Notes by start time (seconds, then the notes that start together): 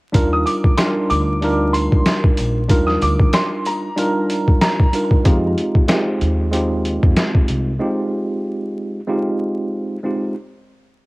0.13 D#2 G3 D4 D#4 F4 A#4, kick, closed hi-hat, sleigh bells
0.33 D#6
0.46 D6, closed hi-hat, sleigh bells
0.64 kick
0.77 G3 D4 D#4 F4 A#4 C6, snare, closed hi-hat, sleigh bells
1.10 D2 D6, closed hi-hat, sleigh bells
1.41 G3 D4 D#4 F4 A#4, closed hi-hat, sleigh bells
1.73 C6, closed hi-hat, sleigh bells
1.92 D#2, kick
2.06 snare, closed hi-hat, sleigh bells
2.24 kick
2.37 A#1, closed hi-hat, sleigh bells
2.68 D#2 G3 D4 D#4 F4 A#4, kick, closed hi-hat, sleigh bells
2.87 D#6, snare
3.01 D2 D6, closed hi-hat, sleigh bells
3.19 kick
3.33 C6, snare, closed hi-hat, sleigh bells
3.65 A#5, closed hi-hat, sleigh bells
3.96 G3 D4 D#4 F4 A#4, closed hi-hat, sleigh bells
4.30 closed hi-hat, sleigh bells
4.48 kick
4.61 A#5, snare, closed hi-hat, sleigh bells
4.80 kick
4.92 G3 D4 D#4 F4 A#4, closed hi-hat, sleigh bells
5.11 kick
5.24 F2 G#3 C4 D#4 F4 G4, kick, closed hi-hat
5.58 closed hi-hat
5.75 kick
5.88 G#3 C4 D#4 F4 G4, snare, closed hi-hat
6.21 D#2, closed hi-hat
6.52 G#3 C4 D#4 F4 G4, closed hi-hat
6.85 closed hi-hat
7.03 F2, kick
7.17 snare, closed hi-hat
7.35 kick
7.48 C2, closed hi-hat
7.79 G#3 C4 D#4 F4 G4
9.07 G#3 C4 D#4 F4 G4
10.03 G#3 C4 D#4 F4 G4